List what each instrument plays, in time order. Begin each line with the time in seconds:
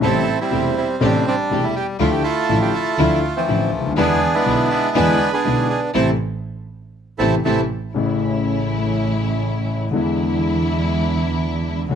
0.01 grand piano A1 A2 C3 G3 A3 E4, double bass A1, string section A3 C4 G4, bandoneon C4 E4 A4
0.40 bandoneon G3 C4 E4
0.51 grand piano E1 E2 C3 G3 A3 E4, double bass E1, string section A3 C4 G4
0.78 bandoneon E4
1.01 grand piano A1 A2 C3 G3 A3 E4, double bass A1, bandoneon G3 D4, string section A3 C4 G4
1.28 bandoneon G3 D4
1.51 grand piano E1 E2 C3 G3 A3 E4, double bass E1, string section A3 C4 G4
1.64 bandoneon E4
1.76 bandoneon G4
1.99 grand piano D2 D3 F3 A3 E4, double bass D2, string section F3 D4 E4, bandoneon A3 F4
2.11 bandoneon G4
2.24 bandoneon E4 F4 A4
2.49 grand piano A1 A2 D3 F3 A3 E4, double bass A1, string section F3 D4 E4
2.61 bandoneon G4
2.73 bandoneon A4
2.98 double bass D2, grand piano D2 D3 F3 A3 E4, string section F3 D4 E4, bandoneon A3 F4
3.37 bandoneon E3 F3 C4
3.48 double bass A1, grand piano A1 A2 D3 F3 A3 E4, string section F3 D4 E4
3.73 double bass D2
3.79 grand piano C#2
3.85 grand piano D2
3.91 grand piano D#2
3.97 double bass E2, grand piano E2 D3 E3 G#3 B3 E4, string section G#3 D4 E4, bandoneon B3 D4 G#4
4.35 bandoneon G#3 B3 E4
4.46 grand piano B1 B2 D3 G#3 B3 E4, double bass B1, string section G#3 D4 E4
4.70 bandoneon E4
4.95 grand piano E2 D3 E3 G#3 B3 E4, double bass E2, string section G#3 D4 E4, bandoneon D4 G#4 B4
5.33 bandoneon B3 D4 G#4
5.45 grand piano B1 B2 D3 G#3 B3 E4, double bass B1, string section G#3 D4 E4
5.70 bandoneon G#4
5.94 double bass A1, grand piano C3 E3 A3, string section A3 C4 E4, bandoneon C4 E4 A4
7.18 double bass A1, grand piano C3 E3 A3, string section A3 C4 E4, bandoneon C4 E4 A4
7.45 double bass A1, grand piano C3 E3 A3, string section A3 C4 E4, bandoneon C4 E4 A4
7.94 double bass A1, grand piano A1 A2 C#3 E3 A3 E4, string section A3 C#4 E4
9.91 grand piano E2 D3 E3 G#3 B3, double bass E2, string section G#3 D4 E4
9.96 grand piano E4
11.89 grand piano D2 D3 A3 C#4, double bass D2, string section C#4 F#4